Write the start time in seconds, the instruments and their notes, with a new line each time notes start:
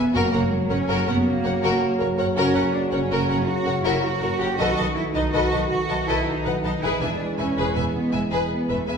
Already playing: cello section B3
0.14 double bass section F#1, timpani F#2, trombone section C#3 F#3, cello section A#3, violin section F#4 A#4, french horn section F#4 C#5, viola section A#4
0.33 double bass section F#1, viola section A#4, violin section C#5 F#5
0.52 cello section F#3
0.70 double bass section F#1, cello section C#4, viola section A#4, violin section C#5 F#5
0.88 double bass section F#1, violin section F#4 A#4, viola section A#4
1.07 double bass section F#1, cello section B3, viola section A#4, violin section C#5 F#5
1.25 cello section A#3
1.44 double bass section F#1, viola section A#4, violin section C#5 F#5
1.62 double bass section F#1, violin section F#4 A#4, viola section A#4
2.00 double bass section F#1, viola section A#4, violin section A#4 C#5
2.17 double bass section F#1, viola section A#4, violin section C#5 F#5
2.36 double bass section F#1, cello section C#4, violin section F#4 A#4, viola section A#4
2.54 double bass section F#1, viola section A#4, violin section C#5 F#5
2.74 cello section D4
2.91 double bass section F#1, cello section C#4, viola section A#4, violin section C#5 F#5
3.10 double bass section F#1, violin section F#4 A#4, viola section A#4
3.28 double bass section F#1, viola section A#4, violin section C#5 F#5
3.47 cello section F#4
3.66 double bass section F#1, viola section A#4, violin section C#5 F#5
3.84 double bass section F#1, cello section E4, violin section F#4 A#4, viola section A#4
4.02 cello section F#4
4.21 double bass section F#1, viola section A#4, violin section A#4 C#5
4.40 double bass section F#1, cello section G4, viola section A#4, violin section C#5 F#5
4.58 double bass section B1, trombone section D#3 A3, cello section F#4, french horn section F#4 B4, violin section A4 D#5, viola section B4
4.77 double bass section B1, viola section B4, violin section D#5 A5
4.96 cello section E4
5.14 double bass section B1, cello section D#4, viola section B4, violin section D#5 A5
5.33 double bass section B1, cello section F#4, violin section A4 D#5, viola section B4
5.51 double bass section B1, viola section B4, violin section D#5 A5
5.70 cello section F#4
5.89 double bass section B1, viola section B4, violin section D#5 A5
6.08 double bass section B1, cello section E4, violin section A4 D#5, viola section B4
6.27 cello section D#4
6.45 double bass section B1, viola section B4, violin section B4 F#5
6.64 double bass section B1, cello section D#4, viola section B4, violin section D#5 A5
6.82 double bass section E1, trombone section E3 G#3, cello section E4, violin section G#4 B4, french horn section G#4, viola section B4
7.01 double bass section E1, cello section D4, viola section B4, violin section E5 G#5
7.38 double bass section E1, cello section C#4, viola section B4, violin section E5 G#5
7.57 double bass section E1, violin section G#4 B4, viola section B4
7.75 double bass section E1, cello section B3, viola section B4, violin section E5 G#5
7.95 cello section B3
8.13 double bass section E1, cello section G#3, viola section B4, violin section E5 G#5
8.31 double bass section E1, cello section G#3, violin section G#4 B4, viola section B4
8.51 cello section B3
8.69 double bass section E1, cello section A3, violin section B4 E5, viola section B4
8.88 double bass section E1, cello section B3, viola section B4, violin section E5 G#5